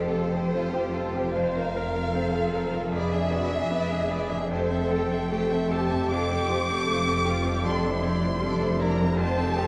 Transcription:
Already playing: F1 F2 C4 G4 A4 C5
0.11 F4 A4
0.15 A4
0.31 G4 C5
0.35 G4
0.50 F4 A4
0.54 C4 F4
0.72 G4 C5
0.93 F4 A4
1.13 F2 G4 C5
1.21 C4
1.25 F4
1.30 A#4 C5 F5
1.35 F2 C5
1.56 F4 A#4
1.74 A#4 C5
1.93 F4 A#4
2.14 C4 A4 C5
2.33 F4 A#4
2.53 A#4 C5
2.74 F2 F4 A#4
2.79 B3
2.84 D4
2.89 F2 G#4 E5
2.94 B4 D5
3.12 D4 G#4 E5
3.32 F#4 G#4 B4 D5
3.51 D4 G#4 E5
3.69 B3 G#4 B4 D5
3.89 D4 G#4 E5
4.10 G#4 B4 D5
4.30 F2 D4 G#4 E5
4.37 A3
4.41 C4
4.46 A4 C5
4.51 F2 G4 C5
4.71 C4 A4 E5
4.90 G4 A4 C5 G5
5.11 C4 A4 E5
5.30 A3 G4 A4 C5
5.49 C4 A4 E5
5.69 G4 A4 C5 A5
5.90 F2 C4 A4 E5
5.97 A3
6.02 C4
6.06 F1 F2 F4 G4 C5
6.11 F2 A4 D6
6.31 C4 G4 A4
6.49 F4 G4 C5
6.69 C4 G4 A4
6.86 A3 F4 A4 C5
7.06 C4 G4 A4
7.24 F4 G4 C5
7.45 F2 C4 G4 A4
7.50 G3
7.55 D4
7.59 E4
7.64 F2 D4 A4 D5 C6
7.83 D4 E4 C5
8.02 D4 E4 G4 D5
8.22 D4 E4 C5
8.41 G3 D4 A4 D5
8.60 D4 E4 C5
8.80 D4 E4 A#4 D5 A#5
8.98 F2 D4 C5
9.02 G3 E4
9.09 C4
9.13 F2 G4
9.18 F4 C5 A5
9.37 C4 G4 A4
9.55 F4 G4 A4 C5

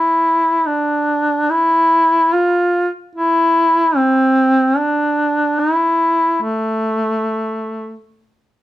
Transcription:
Already playing: E4
0.66 D4
1.50 E4
2.33 F4
3.15 E4
3.96 C4
4.77 D4
5.59 E4
6.42 A3

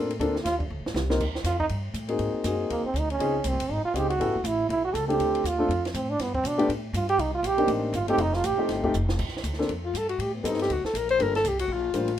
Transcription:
Already playing: A2
0.11 ride
0.19 D2 A#3 C4 D4 F4 A4, ride
0.36 snare
0.44 D#2 F4, snare, hi-hat pedal, ride
0.58 D4, kick
0.70 D2
0.79 A#1
0.86 A1, snare
0.94 C2, snare, hi-hat pedal
1.10 A#3 C4 D#4 F4 A#4, snare
1.20 D#2, kick, crash
1.35 snare
1.44 F2 F4, snare, hi-hat pedal, ride
1.60 D#4, kick
1.69 G2, ride
1.94 A2, hi-hat pedal, ride
2.08 A#3 C4 D#4 F#4 G#4, ride
2.19 G#2, ride
2.34 muted upright bass stroke
2.44 F#2 A#3 C4 D#4 F#4 G#4, hi-hat pedal, ride
2.70 D#2 A#3, ride
2.84 C4, muted upright bass stroke
2.94 D2, hi-hat pedal, ride
2.99 D#4
3.10 C#4, ride
3.19 C#2 C4 C#4 D#4 F4 G#4, ride
3.44 C2 C4, hi-hat pedal, ride
3.53 G#1
3.60 F1, ride
3.69 G#1 D#4
3.84 F4, muted upright bass stroke
3.94 C#2 C4 C#4 D#4 F4 G#4, hi-hat pedal, ride
3.98 G4
4.10 F#4, ride
4.18 A1 B3 C#4 E4 G4 A4, ride
4.27 G1
4.35 E1
4.44 A1 E4, hi-hat pedal, ride
4.69 B1 E4, ride
4.85 F#4
4.94 C#2 A4, hi-hat pedal, ride
5.08 A3 C4 D4 F4 G4 A4, ride
5.19 D2, ride
5.35 ride
5.44 D#2 F4, hi-hat pedal, ride
5.58 A3 C4 D4 F4 A4
5.69 F2, ride
5.85 snare, ride
5.94 A2 C4, hi-hat pedal, ride
6.10 D4
6.19 G2 B3, snare, ride
6.34 C4, kick
6.44 B2 D4, hi-hat pedal, ride
6.57 A3 B3 D4 F4 G4, ride
6.69 A2, ride
6.93 G2 F4, hi-hat pedal, ride
7.09 G4, ride
7.18 C2 D#4, ride
7.35 F4
7.43 A#1 G4, hi-hat pedal, ride
7.57 A#3 C4 D4 D#4 G4, ride
7.67 A1, ride
7.93 G1 F4, hi-hat pedal, ride
8.08 A3 C4 D#4 F4 G4 A4, ride
8.18 F1 D#4, ride
8.33 F4, snare
8.44 A1 G4, hi-hat pedal, ride
8.58 A3 C4 D#4 F4 G4, muted upright bass stroke
8.69 G1, snare, ride
8.83 A3 C4 D#4 F4 G4, kick
8.94 F1, hi-hat pedal
9.09 snare
9.19 A#1, kick, crash
9.28 snare
9.37 snare
9.43 D2, hi-hat pedal, ride
9.53 snare
9.58 A#3 C4 D4 F4 A4, snare
9.69 F2, ride
9.85 F4
9.94 G2, hi-hat pedal, ride
9.98 A4
10.09 F#4, ride
10.19 A2 G4, ride
10.34 B3
10.43 G2 B3 C4 D#4 G4 A4, hi-hat pedal, ride
10.54 snare
10.59 G4, snare, ride
10.70 D2 F#4, ride
10.84 A4, muted upright bass stroke, snare
10.93 A#1 A#4, hi-hat pedal, ride
11.09 C5, ride
11.19 G1 G3 A#3 D4 F4 A4 A#4, ride
11.35 A4, snare, ride
11.44 C2, hi-hat pedal, ride
11.48 G4
11.59 F#4, ride
11.68 A#1
11.73 F4
11.93 A1 G3 A#3 D4 F4 C5, hi-hat pedal, ride
12.08 ride

